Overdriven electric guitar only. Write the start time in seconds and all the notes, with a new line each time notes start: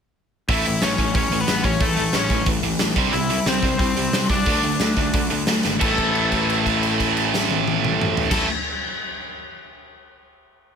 0.50 E4 E5
0.82 C#4 C#5
1.15 C#4 C#5
1.41 B3 B4
1.64 C#4 C#5
1.81 A3 A4
2.15 C#4 C#5
3.13 E4 E5
3.48 C4 C5
3.79 C4 C5
4.30 D4 D5
5.81 A4
8.31 A4